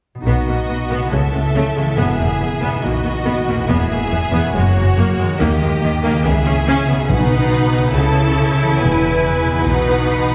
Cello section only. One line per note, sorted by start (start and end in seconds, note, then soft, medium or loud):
0.27 0.35 B2 soft
0.48 0.56 B2 soft
0.70 0.78 B2 soft
0.92 1.00 B2 soft
1.12 1.20 C#3 soft
1.34 1.42 C#3 soft
1.56 1.64 C#3 soft
1.77 1.85 C#3 soft
1.98 2.06 E2 soft
2.20 2.28 E2 soft
2.41 2.49 E2 soft
2.63 2.71 E2 soft
2.84 2.92 B2 soft
3.06 3.14 B2 soft
3.27 3.35 B2 medium
3.49 3.57 B2 soft
3.70 3.78 E2 medium
3.91 3.99 E2 soft
4.12 4.20 E2 soft
4.32 4.40 E2 medium
4.55 4.63 F#2 soft
4.76 4.84 F#2 soft
4.97 5.05 F#2 medium
5.20 5.28 F#2 soft
5.41 5.49 D#3 medium
5.61 5.69 D#3 soft
5.83 5.91 D#3 soft
6.03 6.11 D#3 medium
6.25 6.33 C#3 soft
6.47 6.55 C#3 soft
6.68 6.76 C#3 medium
6.89 6.97 C#3 soft
7.11 7.91 B2 medium
7.95 8.78 C#3 medium
8.80 9.65 E2 medium
9.66 10.35 B2 medium